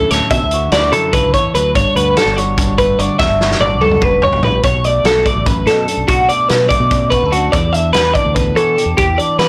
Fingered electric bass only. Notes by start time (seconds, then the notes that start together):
0.11 D2
0.31 B2
0.41 D2
0.72 D2
0.93 F#2
1.13 C#2
1.54 D2
1.76 G1
1.95 D2
2.26 G1
2.99 G1
3.19 E2
3.28 G1
3.59 G1
3.80 C#2
4.02 F#1
4.43 A#1
4.64 B1
5.04 B1
5.36 A1
5.66 B2
5.97 B1
6.09 B1
6.50 B2
6.80 B2
7.23 D2
7.53 E2
7.95 E2
8.25 D2
8.56 E3
8.86 E2
8.98 E2
9.39 E3